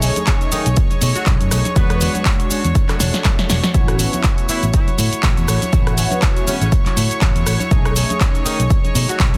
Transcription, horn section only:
0.52 0.68 D#3 medium
0.52 0.68 D#4 medium
1.16 1.28 F#3 medium
1.16 1.28 F#4 loud
1.76 2.26 B3 medium
1.76 2.26 B4 loud
4.49 4.64 E3 medium
4.49 4.64 E4 medium
4.73 4.89 E3 medium
4.73 4.89 E4 medium
6.47 6.56 C#3 medium
6.47 6.56 C#4 medium
6.61 6.68 C#3 medium
6.61 6.68 C#4 medium
8.45 8.61 D#3 medium
8.45 8.61 D#4 medium
9.09 9.22 F#3 medium
9.09 9.22 F#4 medium

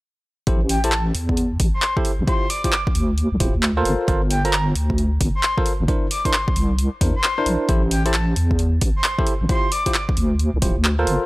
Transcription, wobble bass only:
0.47 1.12 A1 loud
1.15 1.57 E2 medium
1.60 1.72 A1 loud
2.19 2.26 A1 medium
2.95 3.28 D2 medium
3.32 3.39 C2 medium
3.40 3.52 D1 medium
3.55 3.83 D2 loud
3.85 3.97 G1 medium
4.08 4.73 G1 loud
4.76 5.18 D2 medium
5.21 5.32 G1 loud
5.80 5.87 G1 medium
6.56 6.89 C2 medium
7.01 7.13 E2 medium
7.46 7.58 A#1 medium
7.69 8.34 A1 medium
8.37 8.79 E2 medium
8.82 8.93 A1 loud
9.41 9.48 A1 medium
10.17 10.50 D2 medium
10.54 10.61 C2 medium
10.62 10.74 D1 medium
10.77 11.05 D2 loud
11.07 11.19 G1 medium

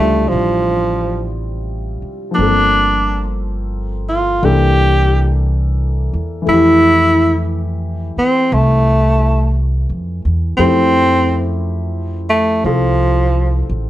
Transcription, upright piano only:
0.00 2.34 C3 soft
0.00 2.29 F3 soft
0.00 2.35 G3 soft
0.00 2.35 C4 soft
0.00 2.36 D4 soft
0.00 2.36 E4 soft
0.00 2.36 F4 soft
2.31 4.39 F3 soft
2.31 4.41 A#3 soft
2.38 4.43 C4 soft
2.38 4.42 A4 soft
4.42 6.40 E3 soft
4.42 6.47 A#3 soft
4.42 6.47 D4 soft
4.42 6.48 A4 soft
6.42 10.55 E3 soft
6.42 10.57 A3 soft
6.49 10.58 E4 soft
6.54 10.58 G4 soft
10.58 13.90 F3 soft
10.58 13.90 A3 soft
10.58 13.90 E4 soft
10.58 13.90 G4 medium
12.63 13.90 C4 soft
12.63 13.90 F4 soft
12.63 13.90 A4 soft

